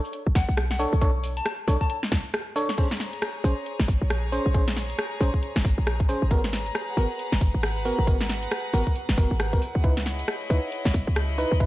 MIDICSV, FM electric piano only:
0, 0, Header, 1, 2, 480
1, 0, Start_track
1, 0, Tempo, 441176
1, 1104, Time_signature, 4, 2, 24, 8
1, 12688, End_track
2, 0, Start_track
2, 0, Title_t, "FM electric piano"
2, 0, Program_c, 0, 5
2, 864, Note_on_c, 0, 62, 97
2, 864, Note_on_c, 0, 69, 92
2, 864, Note_on_c, 0, 73, 105
2, 1020, Note_off_c, 0, 62, 0
2, 1020, Note_off_c, 0, 69, 0
2, 1020, Note_off_c, 0, 73, 0
2, 1104, Note_on_c, 0, 62, 101
2, 1104, Note_on_c, 0, 69, 91
2, 1104, Note_on_c, 0, 73, 108
2, 1206, Note_off_c, 0, 62, 0
2, 1206, Note_off_c, 0, 69, 0
2, 1206, Note_off_c, 0, 73, 0
2, 1823, Note_on_c, 0, 62, 89
2, 1823, Note_on_c, 0, 69, 81
2, 1823, Note_on_c, 0, 73, 100
2, 1925, Note_off_c, 0, 62, 0
2, 1925, Note_off_c, 0, 69, 0
2, 1925, Note_off_c, 0, 73, 0
2, 2783, Note_on_c, 0, 62, 103
2, 2783, Note_on_c, 0, 69, 86
2, 2783, Note_on_c, 0, 73, 112
2, 2940, Note_off_c, 0, 62, 0
2, 2940, Note_off_c, 0, 69, 0
2, 2940, Note_off_c, 0, 73, 0
2, 3023, Note_on_c, 0, 61, 89
2, 3023, Note_on_c, 0, 68, 82
2, 3023, Note_on_c, 0, 72, 94
2, 3125, Note_off_c, 0, 61, 0
2, 3125, Note_off_c, 0, 68, 0
2, 3125, Note_off_c, 0, 72, 0
2, 3744, Note_on_c, 0, 72, 88
2, 3745, Note_on_c, 0, 61, 82
2, 3745, Note_on_c, 0, 68, 73
2, 3846, Note_off_c, 0, 61, 0
2, 3846, Note_off_c, 0, 68, 0
2, 3846, Note_off_c, 0, 72, 0
2, 4704, Note_on_c, 0, 61, 94
2, 4704, Note_on_c, 0, 68, 84
2, 4704, Note_on_c, 0, 72, 107
2, 4860, Note_off_c, 0, 68, 0
2, 4860, Note_off_c, 0, 72, 0
2, 4861, Note_off_c, 0, 61, 0
2, 4944, Note_on_c, 0, 61, 90
2, 4944, Note_on_c, 0, 68, 81
2, 4944, Note_on_c, 0, 72, 101
2, 5045, Note_off_c, 0, 68, 0
2, 5045, Note_off_c, 0, 72, 0
2, 5046, Note_off_c, 0, 61, 0
2, 5664, Note_on_c, 0, 61, 82
2, 5664, Note_on_c, 0, 68, 73
2, 5665, Note_on_c, 0, 72, 91
2, 5766, Note_off_c, 0, 61, 0
2, 5766, Note_off_c, 0, 68, 0
2, 5766, Note_off_c, 0, 72, 0
2, 6623, Note_on_c, 0, 72, 102
2, 6624, Note_on_c, 0, 61, 94
2, 6624, Note_on_c, 0, 68, 86
2, 6780, Note_off_c, 0, 61, 0
2, 6780, Note_off_c, 0, 68, 0
2, 6780, Note_off_c, 0, 72, 0
2, 6864, Note_on_c, 0, 59, 87
2, 6865, Note_on_c, 0, 66, 82
2, 6865, Note_on_c, 0, 70, 104
2, 6966, Note_off_c, 0, 59, 0
2, 6966, Note_off_c, 0, 66, 0
2, 6966, Note_off_c, 0, 70, 0
2, 7584, Note_on_c, 0, 59, 80
2, 7584, Note_on_c, 0, 66, 72
2, 7584, Note_on_c, 0, 70, 90
2, 7685, Note_off_c, 0, 70, 0
2, 7686, Note_off_c, 0, 59, 0
2, 7686, Note_off_c, 0, 66, 0
2, 8544, Note_on_c, 0, 66, 82
2, 8545, Note_on_c, 0, 59, 96
2, 8545, Note_on_c, 0, 70, 102
2, 8701, Note_off_c, 0, 59, 0
2, 8701, Note_off_c, 0, 66, 0
2, 8701, Note_off_c, 0, 70, 0
2, 8783, Note_on_c, 0, 59, 86
2, 8783, Note_on_c, 0, 66, 80
2, 8783, Note_on_c, 0, 70, 100
2, 8885, Note_off_c, 0, 59, 0
2, 8885, Note_off_c, 0, 66, 0
2, 8885, Note_off_c, 0, 70, 0
2, 9504, Note_on_c, 0, 59, 83
2, 9504, Note_on_c, 0, 66, 77
2, 9504, Note_on_c, 0, 70, 91
2, 9605, Note_off_c, 0, 59, 0
2, 9605, Note_off_c, 0, 70, 0
2, 9606, Note_off_c, 0, 66, 0
2, 9984, Note_on_c, 0, 59, 81
2, 9984, Note_on_c, 0, 66, 73
2, 9984, Note_on_c, 0, 70, 90
2, 10140, Note_off_c, 0, 59, 0
2, 10140, Note_off_c, 0, 66, 0
2, 10140, Note_off_c, 0, 70, 0
2, 10368, Note_on_c, 0, 70, 89
2, 10369, Note_on_c, 0, 59, 75
2, 10369, Note_on_c, 0, 66, 70
2, 10453, Note_off_c, 0, 59, 0
2, 10453, Note_off_c, 0, 66, 0
2, 10453, Note_off_c, 0, 70, 0
2, 10703, Note_on_c, 0, 63, 88
2, 10703, Note_on_c, 0, 64, 80
2, 10704, Note_on_c, 0, 71, 104
2, 10805, Note_off_c, 0, 63, 0
2, 10805, Note_off_c, 0, 64, 0
2, 10805, Note_off_c, 0, 71, 0
2, 11424, Note_on_c, 0, 63, 81
2, 11424, Note_on_c, 0, 64, 73
2, 11424, Note_on_c, 0, 71, 86
2, 11525, Note_off_c, 0, 64, 0
2, 11526, Note_off_c, 0, 63, 0
2, 11526, Note_off_c, 0, 71, 0
2, 12383, Note_on_c, 0, 63, 95
2, 12383, Note_on_c, 0, 64, 85
2, 12383, Note_on_c, 0, 71, 105
2, 12540, Note_off_c, 0, 63, 0
2, 12540, Note_off_c, 0, 64, 0
2, 12540, Note_off_c, 0, 71, 0
2, 12624, Note_on_c, 0, 63, 90
2, 12624, Note_on_c, 0, 64, 82
2, 12624, Note_on_c, 0, 71, 101
2, 12688, Note_off_c, 0, 63, 0
2, 12688, Note_off_c, 0, 64, 0
2, 12688, Note_off_c, 0, 71, 0
2, 12688, End_track
0, 0, End_of_file